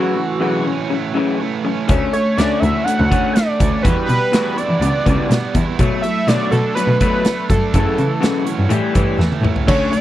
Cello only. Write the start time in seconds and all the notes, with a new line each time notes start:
1.90 D2
2.38 D2
2.62 D2
3.00 D2
3.61 D2
3.85 E2
4.09 B2
4.68 E3
4.80 C#2
5.07 C#2
5.29 B2
5.55 E2
5.80 B2
6.27 B2
6.52 B2
6.87 B2
7.50 G2
7.74 F#2
7.98 C#3
8.58 G2
8.70 A2
8.95 G2
9.19 E2
9.41 A2
9.68 D3